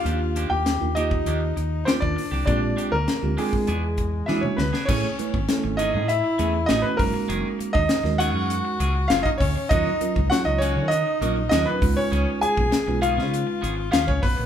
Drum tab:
CC |----------------|----------------|x---------------|----------------|
HH |x-x-x-x-x-x-x-o-|x-x-x-o-x-x-----|--x-x-x-x-x-x-o-|x-x-x-x-x-x-x-o-|
SD |----o-------o---|----o-------o-oo|----o-------o---|----oo------o---|
T2 |----------------|-------------o--|----------------|----------------|
BD |-------o-----o--|o------o--o-----|o--o----------o-|---o---------oo-|

CC |----------------|----------------|
HH |x-x-x-x-x-x-x-o-|x-x-x-x-x-x-x-o-|
SD |----o-------o---|----o--o----o---|
T2 |----------------|----------------|
BD |o--o----------o-|---o---------oo-|